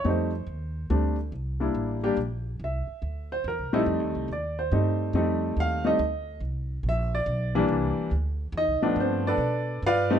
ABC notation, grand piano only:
X:1
M:3/4
L:1/8
Q:"Swing" 1/4=141
K:F
V:1 name="Grand piano"
c6 | z6 | e3 c B E | z2 d c3 |
z2 f _e3 | z2 e d3 | z4 [_E_e]2 | [Cc] [DA=Bd]3 [FBdf]2 |]
V:2 name="Grand piano"
[G,A,C_E] z3 [G,A,CD] z | z [G,B,DE]2 [G,B,DG] z2 | z4 z [G,A,C_E]- | [G,A,C_E]2 z2 [G,A,CE]2 |
[G,A,C_E]3 [G,A,CE] z2 | z4 z [E,G,B,D]- | [E,G,B,D]2 z3 [F,A,=B,D]- | [F,A,=B,D]2 z3 [G,A,C_E] |]